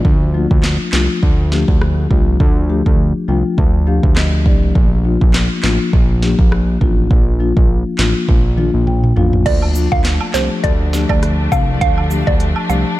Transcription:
0.05 analog synth bass D2, kick
0.34 marimba F3 A3 D4 F4
0.51 analog synth bass D2, kick
0.63 snare, clap
0.93 analog synth bass C2, marimba F3 A3 D4 F4, snare, clap
1.23 analog synth bass D2, kick
1.52 marimba F3 A3 D4 G4, snare
1.68 analog synth bass D2, kick
1.81 cross-stick
2.11 analog synth bass C2, marimba F3 A3 D4 F4, kick
2.40 analog synth bass D2, kick
2.69 marimba F3 A3 D4 G4
2.86 analog synth bass D2, kick
3.28 analog synth bass C2, marimba F3 A3 D4 F4 G5
3.58 analog synth bass D2, marimba A5, kick
3.87 marimba F3 A3 D4 G4 F5
4.03 analog synth bass D2, kick
4.16 marimba D#5, cross-stick, snare, clap
4.45 analog synth bass C2, marimba F3 A3 D4 G4 D5, kick
4.75 analog synth bass A#1, kick
5.04 marimba F3 A#3 D4 F4
5.21 analog synth bass A#1, kick
5.34 snare, clap
5.63 analog synth bass A1, marimba F3 A#3 D4 F4, snare, clap
5.93 analog synth bass A#1, kick
6.22 marimba F3 A#3 D4 G4, snare
6.39 analog synth bass A#1, kick
6.52 cross-stick
6.81 analog synth bass A1, marimba F3 A#3 D4 F4, kick
7.11 analog synth bass A#1, kick
7.40 marimba F3 A#3 D4 F4
7.57 analog synth bass A#1, kick
7.99 analog synth bass A1, marimba F3 A#3 D4 F4, snare, clap
8.28 analog synth bass A#1, kick, high tom
8.57 marimba F3 A#3 D4 F4, mid tom
8.74 analog synth bass A#1
8.87 marimba G5, mid tom
9.04 mid tom
9.16 analog synth bass A1, marimba F3 A#3 D4 F4 F5, floor tom
9.33 floor tom
9.46 analog synth bass D2, string section F3 A3 D4, synth pluck D5, kick, closed hi-hat, crash
9.62 high woodblock
9.75 marimba F3 A3 D4 F4, cabasa
9.92 analog synth bass D2, synth pluck F5, kick
10.05 snare, clap, closed hi-hat
10.21 high woodblock
10.34 analog synth bass C2, marimba F3 A3 D4 G4, synth pluck C5, snare, clap, cabasa
10.64 analog synth bass D2, synth pluck D5, kick, closed hi-hat
10.93 marimba F3 A3 D4 G4, snare, cabasa
11.09 analog synth bass D2, synth pluck D5, kick, high woodblock
11.23 cross-stick, closed hi-hat
11.52 analog synth bass C2, marimba F3 A3 D4 G4, synth pluck F5, kick, cabasa, high woodblock
11.81 analog synth bass D2, synth pluck F5, kick, closed hi-hat
11.98 high woodblock
12.11 marimba F3 A3 D4 G4, cabasa
12.27 analog synth bass D2, synth pluck D5, kick
12.40 closed hi-hat
12.56 high woodblock
12.69 analog synth bass C2, marimba F3 A3 D4 G4, synth pluck F5, cabasa

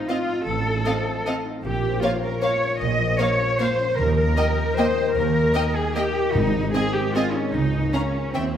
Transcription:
Already playing: harp A2 A3 C4 D#4
0.09 viola section C4, harp F4, cello section F4, violin section D#5 F5
0.29 harp D#4
0.47 double bass section A1, harp A2, cello section A4
0.65 harp A3
0.85 harp C4, viola section C4, violin section D#5 F5
1.06 harp D#4
1.26 viola section C4, harp F4, violin section D#5 F5
1.45 harp D#4
1.64 double bass section A#1, harp A#2, cello section G4
1.83 harp F3
2.03 harp A#3, viola section A#3, cello section F4, violin section C#5 F5
2.23 harp C#4, cello section A#4
2.42 viola section A#3, harp F4, violin section C#5 F5, cello section C#5
2.62 harp C#4
2.80 double bass section A#1, harp A#2, cello section D#5
2.99 harp F3
3.19 harp A#3, viola section A#3, violin section C#5 F5, cello section C#5
3.40 harp C#4
3.60 viola section A#3, harp F4, cello section C5, violin section C#5 F5
3.79 harp C#4
3.98 double bass section D#2, harp D#3, cello section A#4
4.17 harp A#3, cello section A#4
4.37 viola section A#3, harp D#4, violin section D#5 G5
4.57 harp G4
4.77 viola section A#3, harp A#4, cello section C5, violin section D#5 G5
4.97 harp G4
5.15 double bass section D#2, harp D#3, cello section A#4
5.34 harp A#3
5.54 viola section A#3, harp D#4, violin section D#5 G5
5.75 harp G4, cello section G#4
5.96 viola section A#3, cello section G4, harp A#4, violin section D#5 G5
6.16 harp G4
6.35 double bass section G#1, harp G#2, timpani G#2, cello section D#4
6.54 harp D#3
6.74 harp C4, viola section C4, cello section G#4, violin section D#5 G#5
6.94 harp D#4, cello section G4
7.15 viola section C4, cello section F4, harp G#4, violin section D#5 G#5
7.34 cello section C#4, harp D#4
7.53 double bass section C#2, harp C#3, cello section D#4
7.73 harp A#3
7.93 cello section C#4, viola section C#4, harp C#4, violin section F5 A#5
8.14 harp F4
8.34 double bass section D#2, harp D#3, cello section C4, viola section C#4, violin section E5 G5

